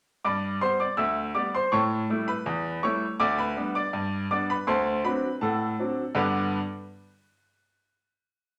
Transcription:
0.25 G2 D5 B5 D6
0.61 G3 B3 G4 C5 C6
0.80 D5 D6
0.97 D2 E5 E6
1.35 G3 B3 G4 D5 D6
1.55 C5 C6
1.72 A2 C#5 A5 C#6
2.10 G3 A3 E4
2.28 B4 B5
2.46 E2
2.83 G3 A3 E4 C#5 C#6
3.20 D2 D5 D6
3.38 B4 B5
3.57 G3 B3 D4
3.75 D5 D6
3.93 G2
4.31 G3 B3 D4 D5 D6
4.50 B4 B5
4.67 D2 C5 A5 C6
5.05 F#3 C4 D4 B4 B5
5.41 A2 A4 F#5 A5
5.79 F#3 C4 D4
6.15 G2 D3 B3 D4 G4 B4 B5

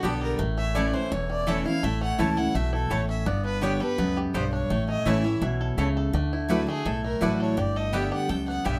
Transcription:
Already playing: G4 A4
0.03 B1 D3 G3 B3 G4 A4 D5 G5
0.21 A4 A#4
0.39 A1 A2 A3
0.58 C#4 E5
0.75 E3 A3 C#4 E4 C#5 D5 A5
0.93 E3 C#4 E4 C5
1.11 E1 E2 E4 C#5
1.30 C#4 D5
1.47 E3 A3 C#4 E4 A4 C#5 E5 A5
1.66 C#4 E4 F5
1.83 A1 A2 A3 E5
2.01 C#4 F#5
2.18 C#2 E3 A3 C#4 E4 C#5 A5
2.37 C#4 E4 A4 F#5
2.55 B1 B2 A3 E5
2.73 E4 A4
2.90 A1 A2 A3 E4 A4 C#5 A5
3.09 C#4 E5
3.26 G1 G2 B3 D5
3.45 D4 B4
3.61 D3 G3 B3 G4 C#5 D5 G5
3.80 B3 G4 A4 B4
3.98 C#2 F#2 B3
4.17 G4
4.34 B1 G2 B3 G4 A4 C5 D5 G5
4.53 D4 C#5
4.70 A1 A2 A3
4.89 C#4 D#5
5.05 A1 E3 A3 C#4 E4 C#5 E5 A5
5.24 C#4 E4
5.42 B1 B2 E4
5.61 A4
5.77 C#2 C#3 A3 E4 C#5 A5
5.97 A4
6.13 D2 D3 A3
6.33 E4
6.49 F#3 A3 E4 F#4 A4 B4 D5 F#5
6.67 A3 E4 F#4 G#4
6.85 B1 A2 E4 A4
7.04 A3 A#4
7.21 A1 F#3 A3 D4 E4 F#4 B4 D5 F#5
7.40 A4 C#5
7.57 G1 G2 G4 D5
7.76 A4 D#5
7.93 D3 G3 B3 G4 D5 E5 G5
8.12 G4 F#5
8.29 C#2 F#2 A4 G5
8.48 B3 F#5
8.65 B1 G2 B3 G4 D5 E5 G5

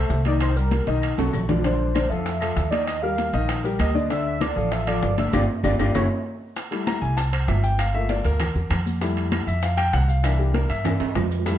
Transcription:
Already playing: A3 A4 C5 E5
0.09 C2, high bongo, low bongo, high conga, maracas
0.25 D#3 D#4 D5 D#5, high conga, high timbale, maracas
0.40 C5, high bongo, high conga, high timbale, claves, maracas
0.56 G3 G4 A#4, high conga, maracas
0.71 high bongo, high conga, high timbale, maracas
0.87 B1 D#3 D#4 D#5, high bongo, high conga, high timbale, maracas
1.02 high conga, high timbale, claves, maracas
1.18 B1 F#3 F#4 A4, high conga, high timbale, maracas
1.33 A#1, low bongo, claves, maracas
1.49 D3 D4 D5, low bongo, low conga, low timbale, maracas
1.64 D3 D4 C5 D5, high bongo, high conga, high timbale, maracas
1.80 high conga
1.95 D3 D4 D5, high bongo, high conga, high timbale, claves, maracas
2.09 F2 F3 F4 A4 E5, high conga, maracas
2.26 high bongo, high conga, high timbale, maracas
2.41 F3 F4 A4, high conga, high timbale, claves, maracas
2.56 D#2, high bongo, low bongo, high conga, maracas
2.71 D#3 D#4 D5 D#5, high conga, high timbale, maracas
2.86 D#5, high bongo, high conga, high timbale, claves, maracas
3.02 G3 G4 A#4 F5, high conga
3.18 high bongo, high conga, high timbale, maracas
3.33 A#1 D#3 D#4 D#5, high bongo, high conga, high timbale, maracas
3.48 high bongo, high conga, high timbale, claves, maracas
3.64 G3 G4 A#4, high bongo, high conga, maracas
3.79 D2 D#5, high bongo, low bongo, high conga, high timbale, claves, maracas
3.94 D3 D4 D5, high bongo, high conga, maracas
4.10 D3 D4 D5 E5, high bongo, high timbale, maracas
4.26 E5, high conga
4.40 D3 D4 D5, high bongo, high conga, high timbale, claves, maracas
4.56 A1 F3 F4 A4, high conga, maracas
4.72 E5, high bongo, high conga, high timbale, maracas
4.87 F3 F4 A4 D5, high conga, high timbale, claves
5.02 G1, high bongo, low bongo, high conga, low timbale, maracas
5.18 D3 D4 D5 E5, high conga, high timbale, maracas
5.33 G1 D4 F4 G4 D5, low bongo, high conga, high timbale, claves, maracas
5.63 G1 D4 F4 G4 D5, low bongo, high conga, high timbale, claves, maracas
5.79 G1 D4 F4 G4 D5, low bongo, high conga, high timbale, claves, maracas
5.95 F#1 C#4 E4 F#4 C#5, low bongo, high conga, high timbale, claves, maracas
6.56 high bongo, high conga, high timbale, maracas
6.71 G3 A3 E4, high conga, high timbale, maracas
6.87 A#5, high bongo, high conga, high timbale, claves, maracas
7.02 C2 G#5, high conga, maracas
7.17 A5, high bongo, high conga, high timbale, maracas
7.32 C5, high conga, high timbale, claves, maracas
7.48 G1 E5, high bongo, low bongo, high conga, high timbale, low timbale, maracas
7.64 G5, maracas
7.79 F5, high bongo, high conga, high timbale, claves, maracas
7.94 A3 A#3 F4 E5, high bongo, high conga, maracas
8.09 D5, high bongo, high conga, high timbale, maracas
8.24 D2 A#4, high timbale, maracas
8.40 high bongo, high conga, low conga, high timbale, claves, maracas
8.55 E2, high bongo, high conga, low conga, maracas
8.70 F2, high bongo, low bongo, high conga, high timbale, claves, maracas
8.86 high bongo, high conga, maracas
9.01 G3 A3 E4, high bongo, high conga, high timbale, maracas
9.16 high conga, high timbale, maracas
9.32 high bongo, high conga, high timbale, claves, maracas
9.47 F2 E5, maracas
9.62 F5, high bongo, high conga, high timbale, maracas
9.77 G5, high conga, high timbale, claves, maracas
9.93 C2 F#5, high bongo, low bongo, high conga, high timbale, maracas
10.08 F5, maracas
10.23 E3 A#3 D4 E5, high bongo, high conga, high timbale, claves, maracas
10.39 G4, high bongo, high conga, maracas
10.54 A#4, high bongo, high conga, high timbale, maracas
10.69 G2 E5, high timbale, maracas
10.84 E3 A#3 D4, high bongo, high conga, low conga, high timbale, claves, maracas
11.00 G2, high bongo, high conga, high timbale, maracas
11.15 F2, high bongo, low bongo, high conga, low timbale, claves, maracas
11.31 high bongo, low timbale, maracas
11.45 G3 A3 E4 E5, high bongo, high conga, high timbale, maracas

